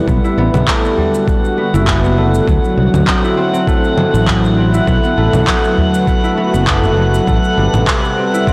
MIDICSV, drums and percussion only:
0, 0, Header, 1, 3, 480
1, 0, Start_track
1, 0, Tempo, 600000
1, 61, Time_signature, 4, 2, 24, 8
1, 6823, End_track
2, 0, Start_track
2, 0, Title_t, "Udu"
2, 781, Note_on_c, 9, 64, 89
2, 861, Note_off_c, 9, 64, 0
2, 4623, Note_on_c, 9, 64, 81
2, 4703, Note_off_c, 9, 64, 0
2, 6823, End_track
3, 0, Start_track
3, 0, Title_t, "Drums"
3, 61, Note_on_c, 9, 36, 106
3, 67, Note_on_c, 9, 82, 55
3, 141, Note_off_c, 9, 36, 0
3, 147, Note_off_c, 9, 82, 0
3, 198, Note_on_c, 9, 82, 33
3, 278, Note_off_c, 9, 82, 0
3, 432, Note_on_c, 9, 64, 76
3, 438, Note_on_c, 9, 82, 69
3, 512, Note_off_c, 9, 64, 0
3, 518, Note_off_c, 9, 82, 0
3, 541, Note_on_c, 9, 36, 102
3, 542, Note_on_c, 9, 39, 100
3, 548, Note_on_c, 9, 82, 56
3, 621, Note_off_c, 9, 36, 0
3, 622, Note_off_c, 9, 39, 0
3, 628, Note_off_c, 9, 82, 0
3, 678, Note_on_c, 9, 82, 32
3, 758, Note_off_c, 9, 82, 0
3, 917, Note_on_c, 9, 82, 65
3, 997, Note_off_c, 9, 82, 0
3, 1021, Note_on_c, 9, 36, 105
3, 1026, Note_on_c, 9, 82, 51
3, 1101, Note_off_c, 9, 36, 0
3, 1106, Note_off_c, 9, 82, 0
3, 1157, Note_on_c, 9, 82, 32
3, 1237, Note_off_c, 9, 82, 0
3, 1397, Note_on_c, 9, 82, 69
3, 1477, Note_off_c, 9, 82, 0
3, 1500, Note_on_c, 9, 39, 103
3, 1501, Note_on_c, 9, 36, 98
3, 1505, Note_on_c, 9, 82, 53
3, 1580, Note_off_c, 9, 39, 0
3, 1581, Note_off_c, 9, 36, 0
3, 1585, Note_off_c, 9, 82, 0
3, 1636, Note_on_c, 9, 82, 32
3, 1716, Note_off_c, 9, 82, 0
3, 1876, Note_on_c, 9, 82, 63
3, 1956, Note_off_c, 9, 82, 0
3, 1981, Note_on_c, 9, 36, 101
3, 1985, Note_on_c, 9, 82, 54
3, 2061, Note_off_c, 9, 36, 0
3, 2065, Note_off_c, 9, 82, 0
3, 2117, Note_on_c, 9, 82, 31
3, 2197, Note_off_c, 9, 82, 0
3, 2351, Note_on_c, 9, 64, 75
3, 2357, Note_on_c, 9, 82, 67
3, 2431, Note_off_c, 9, 64, 0
3, 2437, Note_off_c, 9, 82, 0
3, 2459, Note_on_c, 9, 39, 95
3, 2461, Note_on_c, 9, 36, 100
3, 2464, Note_on_c, 9, 82, 55
3, 2539, Note_off_c, 9, 39, 0
3, 2541, Note_off_c, 9, 36, 0
3, 2544, Note_off_c, 9, 82, 0
3, 2596, Note_on_c, 9, 82, 32
3, 2676, Note_off_c, 9, 82, 0
3, 2835, Note_on_c, 9, 82, 66
3, 2915, Note_off_c, 9, 82, 0
3, 2940, Note_on_c, 9, 36, 109
3, 2947, Note_on_c, 9, 82, 55
3, 3020, Note_off_c, 9, 36, 0
3, 3027, Note_off_c, 9, 82, 0
3, 3076, Note_on_c, 9, 82, 33
3, 3156, Note_off_c, 9, 82, 0
3, 3180, Note_on_c, 9, 64, 66
3, 3260, Note_off_c, 9, 64, 0
3, 3317, Note_on_c, 9, 82, 69
3, 3397, Note_off_c, 9, 82, 0
3, 3419, Note_on_c, 9, 36, 98
3, 3421, Note_on_c, 9, 39, 97
3, 3426, Note_on_c, 9, 82, 56
3, 3499, Note_off_c, 9, 36, 0
3, 3501, Note_off_c, 9, 39, 0
3, 3506, Note_off_c, 9, 82, 0
3, 3557, Note_on_c, 9, 82, 33
3, 3637, Note_off_c, 9, 82, 0
3, 3794, Note_on_c, 9, 82, 66
3, 3874, Note_off_c, 9, 82, 0
3, 3900, Note_on_c, 9, 36, 104
3, 3903, Note_on_c, 9, 82, 52
3, 3980, Note_off_c, 9, 36, 0
3, 3983, Note_off_c, 9, 82, 0
3, 4033, Note_on_c, 9, 82, 33
3, 4113, Note_off_c, 9, 82, 0
3, 4267, Note_on_c, 9, 64, 70
3, 4272, Note_on_c, 9, 82, 70
3, 4347, Note_off_c, 9, 64, 0
3, 4352, Note_off_c, 9, 82, 0
3, 4379, Note_on_c, 9, 36, 107
3, 4379, Note_on_c, 9, 39, 97
3, 4384, Note_on_c, 9, 82, 54
3, 4459, Note_off_c, 9, 36, 0
3, 4459, Note_off_c, 9, 39, 0
3, 4464, Note_off_c, 9, 82, 0
3, 4514, Note_on_c, 9, 82, 33
3, 4594, Note_off_c, 9, 82, 0
3, 4754, Note_on_c, 9, 82, 68
3, 4834, Note_off_c, 9, 82, 0
3, 4859, Note_on_c, 9, 36, 101
3, 4863, Note_on_c, 9, 82, 53
3, 4939, Note_off_c, 9, 36, 0
3, 4943, Note_off_c, 9, 82, 0
3, 4995, Note_on_c, 9, 82, 34
3, 5075, Note_off_c, 9, 82, 0
3, 5235, Note_on_c, 9, 82, 67
3, 5315, Note_off_c, 9, 82, 0
3, 5339, Note_on_c, 9, 36, 102
3, 5339, Note_on_c, 9, 39, 92
3, 5344, Note_on_c, 9, 82, 55
3, 5419, Note_off_c, 9, 36, 0
3, 5419, Note_off_c, 9, 39, 0
3, 5424, Note_off_c, 9, 82, 0
3, 5469, Note_on_c, 9, 64, 58
3, 5475, Note_on_c, 9, 82, 33
3, 5549, Note_off_c, 9, 64, 0
3, 5555, Note_off_c, 9, 82, 0
3, 5715, Note_on_c, 9, 82, 65
3, 5795, Note_off_c, 9, 82, 0
3, 5820, Note_on_c, 9, 36, 98
3, 5822, Note_on_c, 9, 82, 50
3, 5900, Note_off_c, 9, 36, 0
3, 5902, Note_off_c, 9, 82, 0
3, 5955, Note_on_c, 9, 82, 34
3, 6035, Note_off_c, 9, 82, 0
3, 6190, Note_on_c, 9, 64, 74
3, 6196, Note_on_c, 9, 82, 69
3, 6270, Note_off_c, 9, 64, 0
3, 6276, Note_off_c, 9, 82, 0
3, 6299, Note_on_c, 9, 36, 98
3, 6300, Note_on_c, 9, 39, 91
3, 6305, Note_on_c, 9, 82, 53
3, 6379, Note_off_c, 9, 36, 0
3, 6380, Note_off_c, 9, 39, 0
3, 6385, Note_off_c, 9, 82, 0
3, 6437, Note_on_c, 9, 82, 33
3, 6517, Note_off_c, 9, 82, 0
3, 6677, Note_on_c, 9, 82, 69
3, 6757, Note_off_c, 9, 82, 0
3, 6779, Note_on_c, 9, 36, 100
3, 6785, Note_on_c, 9, 82, 51
3, 6823, Note_off_c, 9, 36, 0
3, 6823, Note_off_c, 9, 82, 0
3, 6823, End_track
0, 0, End_of_file